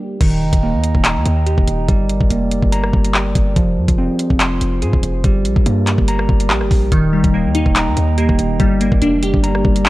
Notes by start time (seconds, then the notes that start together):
Already playing: G3 A#3 G4
0.21 D#1 D#3 D#4 D#5 G5 A#5, kick, closed hi-hat, crash
0.42 F1
0.53 D#1, kick, closed hi-hat
0.63 A#3
0.74 D#2
0.84 closed hi-hat
0.95 D#1, kick
1.05 A#5, clap, closed hi-hat
1.16 D#2
1.26 D#2, closed hi-hat
1.46 G4, closed hi-hat
1.58 D#1, kick
1.68 D#1, closed hi-hat
1.88 G1 G3 G4 A#4 D5, kick, closed hi-hat
2.09 closed hi-hat
2.21 G1, kick
2.30 F1 A#3, closed hi-hat
2.52 closed hi-hat
2.63 G1, kick
2.72 A#5, closed hi-hat
2.84 cross-stick
2.93 G1, kick
3.05 closed hi-hat
3.14 G4, clap
3.35 G1, kick, closed hi-hat
3.56 F1 F3 F4 G#4 C5, kick, closed hi-hat
3.77 F2
3.88 F1, kick, closed hi-hat
3.98 C4
4.19 closed hi-hat
4.30 F1, kick
4.40 C6, clap, closed hi-hat
4.61 F1, closed hi-hat
4.82 G#2 G#4, closed hi-hat
4.93 F1, kick
5.03 F1, closed hi-hat
5.24 G1 G3 G4 A#4 D5, kick, closed hi-hat
5.45 A#1, closed hi-hat
5.56 A#1, kick
5.66 G2 A#3, closed hi-hat
5.87 clap, closed hi-hat
5.98 G1, kick
6.08 A#5, closed hi-hat
6.19 cross-stick
6.29 G1, kick
6.40 closed hi-hat
6.50 A#1 G4, clap
6.61 G1, cross-stick
6.71 A#1, kick, open hi-hat
6.92 D#1 D#3 D#4 D#5 G5 A#5, kick, closed hi-hat
7.13 F1 G3
7.24 D#1, kick, closed hi-hat
7.34 A#3
7.45 D#2
7.55 D#4, closed hi-hat
7.66 D#1, kick
7.76 A#5, clap, closed hi-hat
7.87 D#2
7.97 D#2, closed hi-hat
8.18 A#3 G4, closed hi-hat
8.29 D#1, kick
8.39 D#1, closed hi-hat
8.60 G1 G3 G4 A#4 D5, kick, closed hi-hat
8.81 A#3, closed hi-hat
8.92 G1, kick
9.02 F1 A#3 D4, closed hi-hat
9.23 G4, closed hi-hat
9.34 G1, kick
9.44 A#5, closed hi-hat
9.55 cross-stick
9.65 G1, kick
9.76 closed hi-hat
9.86 D4 G4, clap